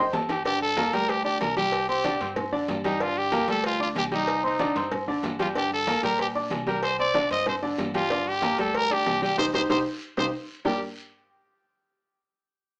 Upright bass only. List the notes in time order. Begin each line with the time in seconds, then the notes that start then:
Already playing: F2
0.13 G2
0.93 D2
1.41 C2
2.21 G2
2.53 F2
2.69 G2
3.48 D2
3.96 C2
4.76 G2
5.08 F2
5.23 G2
6.03 A#2
6.51 C2
7.31 G2
7.78 G2
8.58 D2
9.06 C2
9.38 C2
9.54 C2
9.70 C2
10.18 C2
10.65 G1